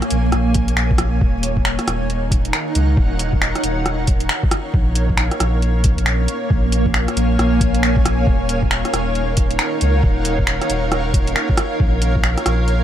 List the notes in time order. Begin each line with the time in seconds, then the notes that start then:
Already playing: A#3 A#4 C#5 F5 G#5
0.02 cross-stick, closed hi-hat
0.10 A#1, closed hi-hat
0.32 A#1, cross-stick, closed hi-hat
0.54 kick, closed hi-hat
0.68 closed hi-hat
0.77 finger snap
0.91 kick
0.98 cross-stick, closed hi-hat
1.21 D#1 D#4, kick
1.40 A#4 C#5, closed hi-hat
1.53 F5
1.57 kick
1.61 F#5
1.65 finger snap
1.79 cross-stick, closed hi-hat
1.88 D#1, cross-stick, closed hi-hat
2.10 closed hi-hat
2.31 kick, closed hi-hat
2.45 closed hi-hat
2.53 finger snap
2.75 C#2, closed hi-hat
2.97 D#1, kick
3.19 closed hi-hat
3.33 kick
3.42 finger snap
3.55 cross-stick, closed hi-hat
3.64 D#1, closed hi-hat
3.86 cross-stick, closed hi-hat
4.07 kick, closed hi-hat
4.20 closed hi-hat
4.29 finger snap
4.43 kick
4.51 cross-stick, closed hi-hat
4.74 A#1 A#3, kick
4.95 closed hi-hat
5.10 kick
5.17 finger snap
5.31 cross-stick, closed hi-hat
5.40 A#1, cross-stick, closed hi-hat
5.62 closed hi-hat
5.84 kick, closed hi-hat
5.98 A#1, closed hi-hat
6.06 finger snap
6.18 G#5
6.28 closed hi-hat
6.50 A#1, kick
6.72 closed hi-hat
6.86 kick
6.94 finger snap
7.08 cross-stick, closed hi-hat
7.17 A#1, closed hi-hat
7.39 A#1, cross-stick, closed hi-hat
7.61 kick, closed hi-hat
7.74 closed hi-hat
7.83 finger snap
7.96 kick
8.05 cross-stick, closed hi-hat
8.27 D#1 D#4, kick
8.49 closed hi-hat
8.63 kick
8.71 finger snap
8.85 cross-stick, closed hi-hat
8.90 D#1 F#5, cross-stick, closed hi-hat
9.15 closed hi-hat
9.37 kick, closed hi-hat
9.51 closed hi-hat
9.59 finger snap
9.81 C#2, closed hi-hat
10.03 D#1, kick
10.25 closed hi-hat
10.39 kick
10.47 finger snap
10.62 cross-stick, closed hi-hat
10.70 D#1, closed hi-hat
10.92 cross-stick, closed hi-hat
11.14 kick, closed hi-hat
11.27 closed hi-hat
11.36 finger snap
11.49 kick
11.57 cross-stick, closed hi-hat
11.79 A#1 A#3, kick
12.02 closed hi-hat
12.16 kick
12.24 finger snap
12.38 cross-stick, closed hi-hat
12.46 A#1, cross-stick, closed hi-hat
12.68 G#5, closed hi-hat